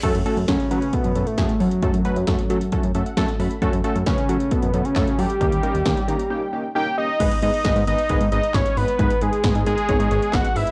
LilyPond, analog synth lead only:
\new Staff \with { instrumentName = "Analog synth lead" } { \time 4/4 \key fis \minor \tempo 4 = 134 r4 cis'8 cis'8 b8. a8. fis8~ | fis2~ fis8 r4. | r4 cis'4 b8. cis'8. g'8~ | g'2~ g'8 r8 g''8 dis''8~ |
\key gis \minor dis''8 dis''4 dis''4 dis''8 cis''8 b'8~ | b'8 gis'4 gis'4. fis''8 e''8 | }